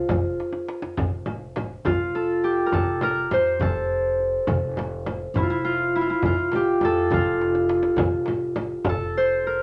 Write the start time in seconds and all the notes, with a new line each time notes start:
Already playing: F4 G#4 A#4
0.09 F1, frame drum, tombak dum
0.40 tombak tek
0.53 tombak ka
0.69 tombak tek
0.82 tombak ka
0.97 F1, frame drum, tombak dum
1.26 frame drum
1.56 tombak tek, frame drum
1.85 F1 F4, tombak dum, frame drum
2.15 A4, tombak ka
2.44 G4, tombak ka
2.66 A#4
2.72 F1 A4, tombak dum, frame drum
3.01 A#4, tombak tek, frame drum
3.31 F2 C5, tombak tek, frame drum
3.60 F1 A4, frame drum, tombak dum
4.20 tombak ka
4.47 F1, frame drum, tombak dum
4.77 tombak tek, frame drum
5.06 tombak tek, frame drum
5.34 F1 E4, tombak dum, frame drum
5.43 F4
5.50 E4
5.64 F4
5.94 E4, tombak ka
6.01 F4
6.10 E4
6.22 F1 F4, tombak dum, frame drum
6.52 G4, tombak tek, frame drum
6.81 F2 A4, tombak tek, frame drum
7.10 F1 F4, tombak dum, frame drum
7.41 tombak tek
7.55 tombak ka
7.69 tombak tek
7.83 tombak ka
7.96 F1, tombak dum, frame drum
8.26 tombak tek, frame drum
8.56 tombak tek, frame drum
8.85 F1, frame drum, tombak dum
8.89 A4
9.15 C5, tombak ka
9.44 A#4, tombak ka